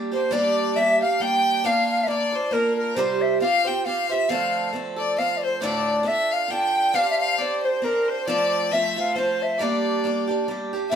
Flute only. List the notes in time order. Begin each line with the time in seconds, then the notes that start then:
0.13 C5
0.33 D5
0.76 E5
1.01 F5
1.22 G5
1.66 F5
1.91 F5
2.04 E5
2.08 D5
2.52 A#4
2.76 A#4
2.95 C5
3.22 E5
3.41 F5
3.66 G5
3.85 F5
4.10 E5
4.29 F5
4.99 D5
5.19 F5
5.37 D5
5.44 C5
5.64 D5
6.08 E5
6.34 F5
6.51 G5
6.95 F5
7.10 E5
7.19 F5
7.40 D5
7.65 C5
7.76 C5
7.84 A#4
8.10 C5
8.27 D5
8.73 E5
8.99 F5
9.18 C5
9.43 E5
9.62 D5
10.90 E5